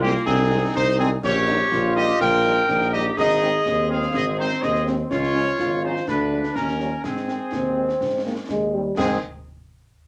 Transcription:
Already playing: tuba C2, trombone section F4
0.01 french horn section D#3 G#3 C4, woodwind section A#3, trumpet section G4
0.15 snare
0.26 tuba C2, woodwind section C4, trombone section D#4, trumpet section G#4, concert bass drum, snare
0.51 french horn section D#3 G#3 C4
0.75 tuba C2, woodwind section D#4, trumpet section C5, concert bass drum, snare
0.98 french horn section D#3 G#3 C4, woodwind section C4, trumpet section G#4
1.22 tuba A#1, trombone section C#4, woodwind section G4, trumpet section C#5, concert bass drum, snare, crash
1.36 snare
1.48 french horn section D#3 G3 D#4, snare
1.71 tuba A#1, trombone section F4, concert bass drum, snare
1.95 french horn section D#3 G3 D#4, woodwind section G4, trumpet section D#5
2.08 snare
2.20 tuba A#1, woodwind section A#4, trumpet section G5, concert bass drum, snare
2.44 french horn section D#3 G3 D#4
2.57 snare
2.68 tuba A#1, trombone section D#4, concert bass drum, snare
2.81 snare
2.93 french horn section D#3 G3 D#4, woodwind section G4, trumpet section D#5, snare
3.16 tuba G#1, trombone section D#4, woodwind section G#4, trumpet section D#5, concert bass drum, snare, crash
3.30 snare
3.41 french horn section D#3 G#3 C4, snare
3.65 tuba D#2, trombone section C4, concert bass drum, snare
3.90 french horn section D#3 G#3 C4, woodwind section G#4, trumpet section F5
4.02 snare
4.13 tuba G#1, woodwind section G#4, trumpet section D#5, concert bass drum, snare
4.38 french horn section D#3 G#3 C4, woodwind section D#4, trumpet section C5
4.50 snare
4.62 tuba D#2, woodwind section G#4, trumpet section D#5, concert bass drum, snare
4.75 snare
4.87 french horn section D#3 G#3 C4, snare
5.10 tuba C#2, trombone section C#4, woodwind section F4, trumpet section C#5, concert bass drum, snare, crash
5.23 snare
5.35 french horn section F3 G#3 C#4, snare
5.59 tuba G#1, trombone section F4, concert bass drum, snare
5.83 french horn section F3 G#3 C#4, woodwind section D#4, trumpet section C5
5.96 snare
6.07 tuba D2, trombone section D4, woodwind section D4, trumpet section B4, concert bass drum, snare
6.32 french horn section F3 G#3 D4
6.44 snare
6.55 tuba D#2, trombone section C#4, woodwind section C#4, trumpet section A#4, concert bass drum, snare
6.68 snare
6.79 french horn section F3 G3 C#4, snare
7.04 tuba G#2, woodwind section C4, trombone section C4, trumpet section G#4, concert bass drum, snare, crash
7.16 snare
7.28 french horn section D#3 G#3 C4, snare
7.52 tuba D#2, euphonium C4, concert bass drum, snare
7.77 french horn section D#3 G#3 C4
7.89 snare
8.01 tuba G#2, concert bass drum, snare
8.25 french horn section D#3 G#3 C4, euphonium A#3
8.49 tuba D#2, euphonium G#3, concert bass drum, snare
8.74 french horn section D#3 G#3 C4, euphonium G3
8.97 tuba G#2, french horn section D#3 G#3 C4, trombone section G#3 C4, woodwind section G#4, trumpet section G#4, concert bass drum, snare, crash

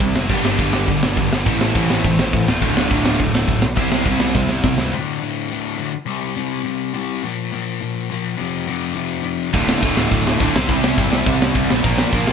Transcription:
Already playing: distorted electric guitar C3 G3 C4 E4 G4 C5
0.00 picked electric bass C2, distorted electric guitar C3 G3, kick
0.15 picked electric bass F1, snare
0.28 picked electric bass G1, distorted electric guitar G2 D3 G3 A#3 D4 G4, kick, crash
0.44 picked electric bass G1, snare
0.58 picked electric bass G1, distorted electric guitar G2 D3 G3, kick, ride
0.73 picked electric bass G1, snare
0.87 picked electric bass G1, distorted electric guitar G2 D3, kick, ride
1.03 picked electric bass G1, snare
1.17 picked electric bass G1, distorted electric guitar G2 D3, kick, ride
1.32 picked electric bass G1, snare
1.46 picked electric bass A1, distorted electric guitar A2 E3 A3 C4 E4 A4, kick, ride
1.61 picked electric bass A1, snare
1.75 picked electric bass A1, distorted electric guitar A2 E3 A3, kick, ride
1.90 picked electric bass A1, snare
2.04 picked electric bass A1, distorted electric guitar A2 E3, kick, ride
2.19 picked electric bass A1, snare
2.33 picked electric bass A1, distorted electric guitar A2 E3, kick, ride
2.46 picked electric bass D1, distorted electric guitar D2 A2 D3 A3 F4, snare
2.61 picked electric bass D1, distorted electric guitar D2 A2 D3, kick, ride
2.77 picked electric bass D1, snare
2.90 picked electric bass D1, distorted electric guitar D2 A2 D3, kick, ride
3.06 picked electric bass D1, snare
3.19 picked electric bass D1, distorted electric guitar D2 A2, kick, ride
3.34 picked electric bass D1, snare
3.48 picked electric bass D1, distorted electric guitar D2 A2, kick, ride
3.62 picked electric bass B1, snare
3.76 picked electric bass C2, distorted electric guitar C3 G3 C4 E4 G4 C5, kick, ride
3.92 picked electric bass C2, snare
4.05 picked electric bass C2, distorted electric guitar C3 G3 C4, kick, ride
4.20 picked electric bass C2, snare
4.35 picked electric bass C2, distorted electric guitar C3 G3, kick, snare
4.49 picked electric bass C2, snare
4.63 picked electric bass C2, distorted electric guitar C3 G3, kick, snare
4.78 picked electric bass C#2, snare
4.92 distorted electric guitar D2 A2 D3
5.20 distorted electric guitar D2 A2 D3
5.49 distorted electric guitar D2 A2 D3
5.77 distorted electric guitar D2 A2 D3
6.06 distorted electric guitar C3 G3 C4
6.36 distorted electric guitar C3 G3 C4
6.64 distorted electric guitar C3 G3 C4
6.94 distorted electric guitar C3 G3 C4
7.23 distorted electric guitar A#2 F3 A#3
7.52 distorted electric guitar A#2 F3 A#3
7.81 distorted electric guitar A#2 F3 A#3
8.10 distorted electric guitar A#2 F3 A#3
8.38 distorted electric guitar F2 C3 F3
8.67 distorted electric guitar F2 C3 F3
8.94 distorted electric guitar F2 C3 F3
9.23 distorted electric guitar F2 C3 F3
9.52 picked electric bass D1, distorted electric guitar D2 A2 D3 A3 F4, kick, crash
9.69 snare
9.82 picked electric bass D1, distorted electric guitar D2 A2 D3, kick, ride
9.97 picked electric bass D1, snare
10.10 picked electric bass D1, distorted electric guitar D2 A2 D3, kick, ride
10.25 picked electric bass D1, snare
10.40 picked electric bass D1, distorted electric guitar D2 A2 D3, kick, ride
10.53 picked electric bass C2, distorted electric guitar C3 G3 C4 E4 G4 C5, snare
10.67 picked electric bass C2, distorted electric guitar C3 G3 C4, kick, ride
10.83 picked electric bass C2, snare
10.97 picked electric bass G1, distorted electric guitar C3 G3 C4, kick, ride
11.12 picked electric bass C2, snare
11.26 picked electric bass C2, distorted electric guitar C3 G3 C4, kick, ride
11.41 picked electric bass C2, snare
11.55 picked electric bass C2, distorted electric guitar C3 G3 C4, kick, ride
11.70 picked electric bass A#1, snare
11.82 picked electric bass A#1, distorted electric guitar A#2 F3 A#3 D4 F4 A#4, kick, ride
11.87 distorted electric guitar A#3
11.98 snare
12.13 picked electric bass A#1, distorted electric guitar A#2 F3 A#3, kick, ride
12.27 picked electric bass A#1, snare

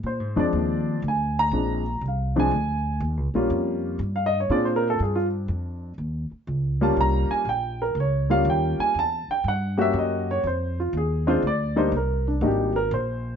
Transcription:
0.03 upright bass A#2, grand piano C5
0.20 upright bass G#2
0.36 upright bass F2, grand piano F3 G#3 C4 D4 D5
0.53 upright bass D#2
1.02 upright bass D2
1.08 grand piano G#5
1.39 grand piano A#5
1.51 upright bass A#1, grand piano F3 G#3 C4 D4
2.01 upright bass C2
2.08 grand piano F5
2.36 grand piano F3 G#3 C4 D4 G#5
2.51 upright bass D2
3.00 upright bass D#2
3.17 upright bass C#2
3.34 upright bass A#1, grand piano G3 A#3 C#4 F4
3.50 upright bass F2
3.99 upright bass G2
4.16 grand piano F5
4.26 grand piano D#5
4.40 grand piano C#5
4.50 upright bass A#2, grand piano C4 D4 F4 G#4 D5
4.65 grand piano C5
4.76 grand piano A#4
4.90 grand piano A4
5.00 upright bass G2, grand piano G#4
5.15 grand piano F4
5.48 upright bass F2
5.98 upright bass D#2
6.31 muted upright bass stroke
6.47 upright bass C#2
6.81 grand piano G3 A#3 C#4 F4 A5
6.97 upright bass C2
7.01 grand piano A#5
7.30 grand piano G#5, muted upright bass stroke
7.45 upright bass A#1
7.49 grand piano G5
7.82 grand piano A#4
7.95 upright bass C#2
8.00 grand piano C#5
8.30 grand piano G3 A#3 C#4 F4 F5
8.45 upright bass D#2
8.50 grand piano G5
8.79 grand piano G#5, muted upright bass stroke
8.95 upright bass E2
8.99 grand piano A5
9.28 grand piano G5, muted upright bass stroke
9.44 upright bass G2
9.48 grand piano F#5
9.78 grand piano A#3 C#4 F#4 G4 E5
9.93 upright bass F#2
9.99 grand piano D#5
10.31 grand piano C#5
10.44 upright bass F2, grand piano C5
10.80 grand piano F4
10.93 upright bass D#2
10.97 grand piano G#4
11.27 grand piano G#3 C4 D4 F4 C5
11.42 upright bass D2
11.47 grand piano D5
11.76 grand piano G3 A#3 D4 D#4 C5
11.92 upright bass C2
11.97 grand piano A#4
12.28 grand piano D4
12.41 upright bass G#1, grand piano G3 A#3 D4 D#4 F#4
12.47 grand piano G4
12.76 grand piano A#4
12.91 upright bass A#1, grand piano C5

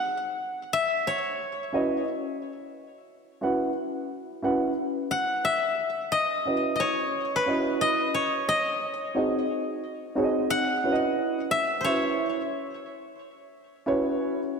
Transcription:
Already playing: koto F#5
0.73 koto E5
1.07 koto C#5
1.72 upright piano C#4 E4 F#4 B4 D#5
3.41 upright piano C#4 E4 F#4 B4 F#5
4.42 upright piano C#4 E4 F#4 B4 F#5
5.11 koto F#5
5.45 koto E5
6.12 koto D#5
6.45 upright piano C#4 E4 F#4 B4 D#5
6.76 koto D#5
6.80 koto C#5
7.36 koto B4
7.46 upright piano C#4 E4 F#4 B4 D#5
7.81 koto D#5
8.14 koto C#5
8.49 koto D#5
9.15 upright piano C4 D#4 F#4 G#4 D#5
10.15 upright piano C4 D#4 F#4 G#4 C#5
10.24 upright piano D#5
10.50 koto F#5
10.83 upright piano C#4 E4 F#4 B4 C#5
10.92 upright piano D#5
11.51 koto E5
11.81 upright piano C#4 E4, koto C5 C#5
11.85 upright piano F#4 B4 E5
13.86 upright piano C#4 E4 F#4 B4 C#5

